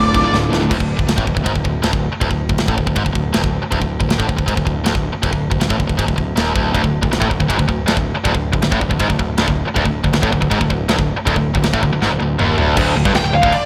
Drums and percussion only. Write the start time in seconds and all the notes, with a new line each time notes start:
0.14 kick, crash
0.34 snare
0.53 snare
0.71 kick, crash
0.80 kick
0.99 kick
1.09 snare, ride bell
1.18 kick
1.27 kick
1.37 kick
1.46 kick, ride bell
1.56 kick
1.65 kick
1.83 snare, ride bell
1.93 kick
2.21 kick, ride bell
2.31 kick
2.49 kick
2.58 snare, ride bell
2.68 kick
2.78 kick
2.87 kick
2.96 kick, ride bell
3.06 kick
3.15 kick
3.34 snare, ride bell
3.44 kick
3.72 kick, ride bell
3.82 kick
4.01 kick
4.10 snare, ride bell
4.20 kick
4.29 kick
4.39 kick
4.48 kick, ride bell
4.57 kick
4.67 kick
4.86 snare, ride bell
4.95 kick
5.23 kick, ride bell
5.33 kick
5.51 kick
5.61 snare, ride bell
5.70 kick
5.80 kick
5.89 kick
5.99 kick, ride bell
6.08 kick
6.18 kick
6.37 snare, ride bell
6.56 kick
6.75 kick, ride bell
6.84 kick
7.03 kick
7.13 snare, ride bell
7.22 kick
7.31 kick
7.40 kick
7.50 kick, ride bell
7.59 kick
7.69 kick
7.88 snare, ride bell
7.97 kick
8.25 kick, ride bell
8.35 kick
8.53 kick
8.62 snare, ride bell
8.72 kick
8.81 kick
8.91 kick
8.99 kick, ride bell
9.10 kick
9.19 kick
9.38 snare, ride bell
9.48 kick
9.76 kick, ride bell
9.85 kick
10.04 kick
10.13 snare, ride bell
10.23 kick
10.33 kick
10.42 kick
10.51 kick, ride bell
10.61 kick
10.70 kick
10.89 snare, ride bell
10.99 kick
11.27 kick, ride bell
11.36 kick
11.55 kick
11.64 snare, ride bell
11.73 kick
11.83 kick
12.02 snare
12.20 high tom
12.39 mid tom
12.58 floor tom
12.77 kick, crash, china
13.05 kick
13.15 snare, china
13.43 kick
13.52 china